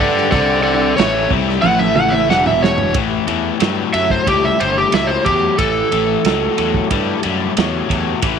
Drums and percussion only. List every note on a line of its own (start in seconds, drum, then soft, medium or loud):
0.17 snare soft
0.32 kick loud
0.32 crash medium
0.98 snare loud
0.98 crash medium
1.31 kick loud
1.49 snare soft
1.63 high tom medium
1.80 high tom medium
1.95 mid tom medium
2.12 mid tom medium
2.31 snare medium
2.46 mid tom medium
2.64 snare loud
2.78 floor tom loud
2.94 kick loud
2.94 ride medium
3.28 ride medium
3.60 snare loud
3.60 ride medium
3.94 ride medium
4.10 kick medium
4.27 kick loud
4.27 ride medium
4.60 ride medium
4.92 snare loud
4.92 ride medium
5.26 kick medium
5.26 ride medium
5.58 kick loud
5.58 ride medium
5.92 ride medium
6.25 snare loud
6.25 ride medium
6.58 ride medium
6.74 kick medium
6.91 kick loud
6.91 ride medium
7.23 ride medium
7.57 snare loud
7.57 ride medium
7.90 kick medium
7.90 ride medium
8.22 kick loud
8.22 ride medium